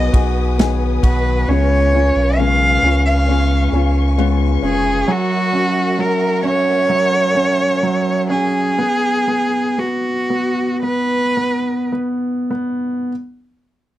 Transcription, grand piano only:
0.00 0.58 B3 medium
0.00 0.13 F#4 medium
0.13 1.02 F#4 medium
0.58 1.45 B3 medium
1.03 1.47 F#4 medium
1.49 1.93 C#4 medium
1.94 2.37 C#4 medium
2.38 2.82 C#4 medium
2.84 3.27 C#4 medium
3.29 3.72 C#4 medium
3.73 4.17 C#4 medium
4.18 4.61 C#4 medium
4.63 5.05 C#4 medium
5.08 5.97 F#3 medium
5.53 6.42 C#4 medium
5.99 6.88 F#3 medium
6.43 7.33 C#4 medium
6.89 7.81 F#3 medium
7.35 8.28 C#4 medium
7.83 8.75 F#3 medium
8.30 8.76 C#4 medium
8.78 9.26 B3 medium
9.28 9.77 B3 medium
9.78 10.28 B3 medium
10.30 10.81 B3 medium
10.83 11.35 B3 medium
11.37 11.91 B3 medium
11.92 12.49 B3 medium
12.51 13.08 B3 medium

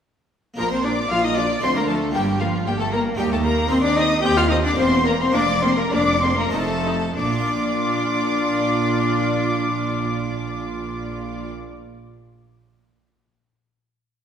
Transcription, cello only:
0.58 0.70 A#3 medium
0.71 0.84 C4 medium
0.84 0.92 D4 medium
1.11 1.26 F4 medium
1.25 1.37 D#4 medium
1.38 1.46 D4 medium
1.64 1.69 C4 loud
1.76 1.82 A#3 medium
1.90 2.15 A3 medium
2.15 2.41 G3 medium
2.41 2.69 F3 medium
2.67 2.79 G3 medium
2.80 2.95 A3 medium
2.93 3.21 A#3 loud
3.19 3.34 G3 loud
3.32 3.46 A3 medium
3.44 3.70 A#3 loud
3.71 3.83 C4 loud
3.83 3.98 D4 loud
3.96 4.22 D#4 loud
4.23 4.38 G4 loud
4.37 4.52 F4 loud
4.50 4.63 D#4 medium
4.64 4.78 D4 loud
4.78 5.05 C4 loud
5.06 5.19 A#3 loud
5.20 5.33 C4 loud
5.34 5.42 D4 loud
5.62 5.76 C4 loud
5.77 5.83 A#3 medium
5.91 6.21 D4 loud
6.22 6.37 C4 loud
6.37 6.52 A#3 medium
6.53 7.16 A3 loud
7.17 11.48 D4 medium

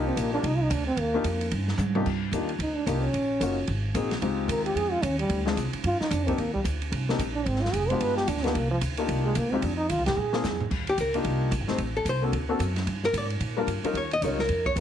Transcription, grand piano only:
0.00 0.30 A#3 medium
0.00 0.30 D4 medium
0.00 0.30 D#4 medium
0.00 0.30 F4 medium
0.00 0.31 G4 medium
0.34 0.43 A#3 medium
0.34 0.43 D4 medium
0.34 0.43 D#4 medium
0.34 0.44 F4 medium
0.34 0.44 G4 medium
1.14 1.24 A#3 medium
1.14 1.24 D4 medium
1.14 1.24 D#4 medium
1.14 1.25 F4 medium
1.14 1.25 G4 medium
1.95 2.05 C3 medium
1.95 2.05 A#3 medium
1.95 2.05 D4 medium
1.95 2.05 D#4 medium
1.95 2.06 F4 medium
1.95 2.06 G4 loud
2.33 2.48 A#3 medium
2.33 2.48 D4 medium
2.33 2.48 D#4 medium
2.33 2.48 F4 medium
2.33 2.49 G4 medium
2.87 3.02 A#3 medium
2.87 3.02 D4 medium
2.87 3.02 D#4 medium
2.87 3.02 F4 medium
2.87 3.03 G4 medium
3.41 3.56 A#3 medium
3.41 3.56 C#4 medium
3.41 3.56 D#4 medium
3.41 3.56 F4 medium
3.41 3.56 F#4 medium
3.95 4.10 A#3 medium
3.95 4.10 C4 medium
3.95 4.10 D#4 medium
3.95 4.11 F#4 medium
3.95 4.11 G#4 medium
4.22 4.97 G#3 medium
4.22 4.97 C4 medium
4.22 4.97 D#4 medium
4.22 4.97 F4 medium
4.22 4.97 G4 medium
5.46 5.56 G#3 medium
5.46 5.56 C4 medium
5.46 5.56 D4 medium
5.46 5.56 F4 medium
5.46 5.57 G#4 medium
6.27 6.37 A#3 medium
6.27 6.37 C4 medium
6.27 6.38 D4 medium
6.27 6.38 D#4 medium
6.27 6.38 G4 medium
7.09 7.19 A#3 medium
7.09 7.19 C4 medium
7.09 7.19 D4 medium
7.09 7.19 D#4 medium
7.09 7.19 G4 medium
7.90 8.26 G#3 medium
7.90 8.26 B3 medium
7.90 8.26 D4 medium
7.90 8.26 F4 medium
7.90 8.27 G4 medium
8.44 8.54 A#3 medium
8.44 8.54 D4 medium
8.44 8.54 D#4 medium
8.44 8.54 F4 medium
8.44 8.55 G4 medium
8.98 9.34 A#3 medium
8.98 9.34 D4 medium
8.98 9.34 D#4 medium
8.98 9.34 F4 medium
8.98 9.34 G4 medium
9.52 9.62 G#3 medium
9.52 9.62 C4 medium
9.52 9.62 D#4 medium
9.52 9.62 F4 medium
9.52 9.63 G4 medium
10.33 10.43 A#3 medium
10.33 10.43 C4 medium
10.33 10.43 D4 medium
10.33 10.43 F4 medium
10.33 10.43 G#4 medium
11.14 11.50 A#3 medium
11.14 11.50 D4 medium
11.14 11.50 D#4 medium
11.14 11.50 F4 medium
11.14 11.50 G4 medium
11.68 11.78 A3 medium
11.68 11.78 C4 medium
11.68 11.78 D#4 medium
11.68 11.79 G4 medium
11.68 11.79 C5 medium
12.22 12.32 A#3 medium
12.22 12.32 C4 medium
12.22 12.32 D4 medium
12.22 12.32 F#4 medium
12.22 12.33 A4 medium
12.49 12.59 A#3 medium
12.49 12.59 C4 medium
12.49 12.59 D4 medium
12.49 12.59 F#4 medium
12.49 12.59 A4 medium
13.57 13.67 G3 medium
13.57 13.67 A#3 medium
13.57 13.67 D4 medium
13.57 13.67 F4 medium
13.57 13.67 A#4 medium
13.84 13.94 G3 medium
13.84 13.94 C#4 medium
13.84 13.94 D#4 medium
13.84 13.94 F4 medium
13.84 13.95 A#4 medium
14.23 14.37 G3 medium
14.23 14.37 C#4 medium
14.23 14.37 D#4 medium
14.23 14.38 F4 medium
14.23 14.38 A#4 medium
14.77 14.80 G3 medium
14.77 14.80 C#4 medium

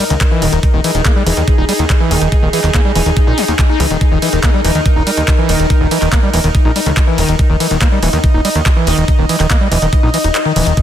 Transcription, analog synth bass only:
0.10 0.16 C#2 medium
0.42 0.48 D#1 medium
0.53 0.58 D#1 medium
0.74 0.79 D#1 medium
0.95 1.01 D#1 medium
1.26 1.32 D#1 medium
1.37 1.43 D#2 medium
1.58 1.64 D#1 medium
1.79 1.85 D#2 medium
2.11 2.17 D#1 loud
2.22 2.27 D#1 medium
2.43 2.48 D#1 medium
2.64 2.70 D#1 medium
2.95 3.01 D#1 loud
3.06 3.12 D#1 medium
3.27 3.33 A#1 medium
3.48 3.54 D#2 medium
3.80 3.86 C#2 loud
3.91 3.96 D#1 medium
4.12 4.18 D#1 medium
4.33 4.39 D#1 medium
4.64 4.70 D#1 loud
4.75 4.81 D#2 medium
4.96 5.02 D#1 medium
5.17 5.23 D#2 medium
5.49 5.55 D#1 loud
5.60 5.65 D#1 medium
5.81 5.87 D#1 medium
6.02 6.08 D#1 medium
6.34 6.39 D#1 medium
6.44 6.50 D#1 medium
6.65 6.71 A#1 medium
6.86 6.92 C#2 medium
7.18 7.24 D#1 loud
7.29 7.34 D#1 medium
7.50 7.56 D#1 medium
7.71 7.77 D#1 medium
8.03 8.08 D#1 medium
8.13 8.19 D#2 medium
8.34 8.40 D#1 medium
8.55 8.61 D#2 medium
8.87 8.93 D#1 medium
8.98 9.03 D#1 medium
9.19 9.25 D#1 medium
9.40 9.46 D#1 medium
9.72 9.77 D#1 loud
9.82 9.88 D#1 medium
10.03 10.09 A#1 medium
10.24 10.30 D#1 medium
10.56 10.62 D#1 loud
10.67 10.72 D#1 medium

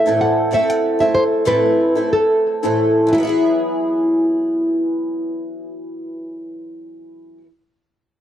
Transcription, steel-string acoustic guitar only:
0.06 0.51 A2 medium
0.06 0.51 E3 medium
0.06 0.50 A3 medium
0.06 0.51 C4 medium
0.06 0.50 E4 medium
0.06 0.50 A4 medium
0.51 0.99 A3 medium
0.51 0.99 C4 medium
0.51 0.99 E4 medium
0.51 0.98 A4 medium
0.99 1.45 A3 soft
0.99 1.44 C4 soft
0.99 1.45 E4 medium
0.99 1.45 A4 medium
1.45 1.96 A2 medium
1.45 1.96 E3 medium
1.45 1.96 A3 medium
1.45 1.95 C4 medium
1.45 1.95 E4 medium
1.45 1.94 A4 medium
1.95 2.63 A3 soft
1.95 2.62 C4 soft
1.95 2.63 E4 soft
1.95 2.62 A4 medium
2.63 3.13 A2 medium
2.63 3.06 E3 medium
2.63 3.12 A3 medium
2.63 3.13 C4 medium
2.63 3.13 E4 medium
2.63 3.13 A4 medium
3.07 7.38 E3 medium
3.13 7.41 F#3 medium
3.18 7.44 B3 medium
3.23 7.46 E4 medium
3.27 7.49 G#4 medium

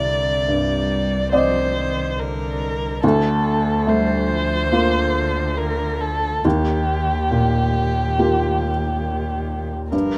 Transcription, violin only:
0.00 1.34 D5 soft
1.34 2.21 C5 soft
2.20 3.03 A#4 soft
3.04 3.91 A4 soft
3.89 5.59 C5 medium
5.58 6.02 A#4 soft
6.00 6.46 A4 soft
6.44 9.72 G4 soft
9.92 10.18 A#4 soft

